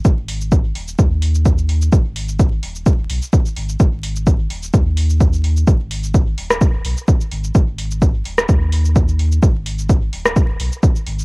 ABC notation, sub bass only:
X:1
M:4/4
L:1/8
Q:"Swing 16ths" 1/4=128
K:G#m
V:1 name="Sub bass" clef=bass
G,,,3 D,,, D,,4 | G,,,3 D,,,2 B,,, z G,,, | G,,,3 D,,, D,,4 | G,,,3 D,,,2 B,,, z G,,, |
G,,,3 D,,, D,,4 | G,,,3 D,,,2 B,,, z G,,, |]